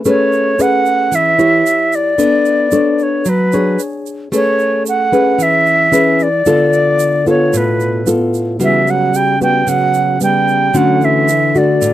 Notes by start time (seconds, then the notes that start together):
0.05 A3 C#4 G#4 B4 C#5, shaker
0.33 shaker
0.59 C#4 G#4 B4 F#5, shaker
0.86 shaker
1.12 E3 E5, shaker
1.39 E4 G4 C#5, shaker
1.66 shaker
1.93 D5, shaker
2.18 B3 D4 A4, shaker
2.45 shaker
2.71 D4 A4 C#5, shaker
2.99 shaker
3.03 C#5
3.25 F#3 B4, shaker
3.52 D4 G#4 C#5, shaker
3.79 shaker
4.06 shaker
4.32 A3 C#4 G#4 B4 C#5, shaker
4.59 shaker
4.86 F#5, shaker
5.12 C#4 G#4 B4, shaker
5.38 E3, shaker
5.43 E5
5.66 shaker
5.92 C#4 G#4 B4, shaker
6.19 D5, shaker
6.46 D3 B3 F4 A4, shaker
6.73 shaker
6.99 shaker
7.26 B3 F4 A4 C#5, shaker
7.53 A2 B2 B4, shaker
7.80 shaker
8.07 B3 F4 A4, shaker
8.34 shaker
8.60 C#3 E3 G3 B3 F#4, shaker
8.64 E5
8.87 F#3 F#5, shaker
9.14 G3 G5, shaker
9.40 G3 B3 F#4 G5, shaker
9.66 C#3 F#3 F#5, shaker
9.94 shaker
10.20 G3 B3 G5, shaker
10.48 shaker
10.74 D3 F#3 A3 C#4 F#4 F#5, shaker
11.01 E3 E5, shaker
11.28 shaker
11.55 D3 A3 F#4 D5, shaker
11.81 A2, shaker